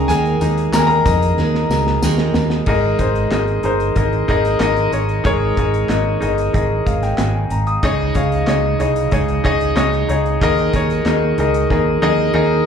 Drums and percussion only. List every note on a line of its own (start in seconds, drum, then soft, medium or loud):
0.09 closed hi-hat medium
0.09 tambourine soft
0.25 closed hi-hat soft
0.41 closed hi-hat medium
0.41 tambourine soft
0.58 closed hi-hat soft
0.73 snare loud
0.73 clap medium
0.73 closed hi-hat medium
0.73 tambourine medium
0.90 closed hi-hat soft
1.06 kick medium
1.06 closed hi-hat medium
1.06 tambourine soft
1.22 closed hi-hat medium
1.38 snare medium
1.55 snare soft
1.71 snare medium
1.71 tambourine soft
1.87 snare medium
2.02 snare medium
2.02 tambourine medium
2.18 snare medium
2.34 snare loud
2.34 tambourine soft
2.50 snare medium
2.66 kick medium
2.66 crash medium
2.99 kick medium
2.99 closed hi-hat medium
3.15 closed hi-hat soft
3.31 snare medium
3.31 clap medium
3.31 closed hi-hat medium
3.48 closed hi-hat soft
3.63 closed hi-hat medium
3.80 closed hi-hat soft
3.96 kick medium
3.96 closed hi-hat medium
4.13 closed hi-hat soft
4.29 kick medium
4.29 closed hi-hat medium
4.45 snare soft
4.45 closed hi-hat soft
4.60 snare medium
4.60 clap medium
4.60 closed hi-hat medium
4.76 closed hi-hat soft
4.93 closed hi-hat medium
5.09 closed hi-hat soft
5.25 kick loud
5.25 closed hi-hat medium
5.57 kick medium
5.57 closed hi-hat medium
5.74 closed hi-hat soft
5.89 snare medium
5.89 clap medium
5.89 closed hi-hat medium
6.22 closed hi-hat medium
6.38 closed hi-hat soft
6.54 kick medium
6.54 closed hi-hat medium
6.87 kick medium
6.87 closed hi-hat medium
7.03 snare soft
7.03 closed hi-hat soft
7.18 snare loud
7.18 clap medium
7.18 closed hi-hat medium
7.50 closed hi-hat medium
7.67 closed hi-hat soft
7.83 kick loud
7.83 closed hi-hat medium
8.15 kick medium
8.15 closed hi-hat medium
8.32 closed hi-hat soft
8.47 snare medium
8.47 clap medium
8.47 closed hi-hat medium
8.80 closed hi-hat medium
8.96 closed hi-hat medium
9.11 kick medium
9.11 closed hi-hat medium
9.28 closed hi-hat soft
9.45 kick medium
9.45 closed hi-hat medium
9.61 closed hi-hat soft
9.77 snare loud
9.77 clap medium
9.77 closed hi-hat medium
9.93 closed hi-hat soft
10.09 closed hi-hat medium
10.26 closed hi-hat soft
10.41 kick loud
10.41 closed hi-hat medium
10.58 closed hi-hat soft
10.73 kick medium
10.73 closed hi-hat medium
10.90 closed hi-hat soft
11.06 snare medium
11.06 clap medium
11.06 closed hi-hat medium
11.38 closed hi-hat medium
11.54 closed hi-hat medium
11.70 kick medium
11.70 snare medium
12.03 high tom medium